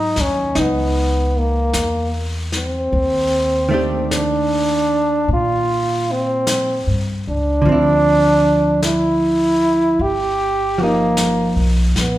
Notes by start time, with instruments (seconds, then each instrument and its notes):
Already playing: upright bass G#2, hollow-body jazz guitar F#3 B3 D#4, trombone D#4
0.16 upright bass D#2, snare
0.21 trombone C#4
0.55 upright bass C#2, hollow-body jazz guitar D#4, brush sweep, snare
0.60 trombone B3
1.38 trombone A#3
1.73 upright bass E2, brush sweep, snare, hi-hat pedal
2.52 trombone C4, snare
2.92 upright bass D#2, brush sweep
3.69 hollow-body jazz guitar D#3 A3 D4
3.74 hollow-body jazz guitar G4
4.11 trombone D4, brush sweep, snare, hi-hat pedal
5.28 upright bass A#2, brush sweep
5.33 trombone F4
6.12 trombone C4
6.47 brush sweep, snare, hi-hat pedal
6.87 upright bass G2
7.28 upright bass C#2, trombone D4
7.62 upright bass D2, hollow-body jazz guitar D3 F3, brush sweep
7.69 hollow-body jazz guitar C4 E4
8.82 trombone E4, brush sweep, snare, hi-hat pedal
9.99 upright bass G1, trombone G4, brush sweep
10.78 hollow-body jazz guitar F3, trombone A#3
10.83 hollow-body jazz guitar D#4
11.17 brush sweep, snare, hi-hat pedal
11.56 upright bass B1
11.95 upright bass A#1, snare
12.01 trombone B3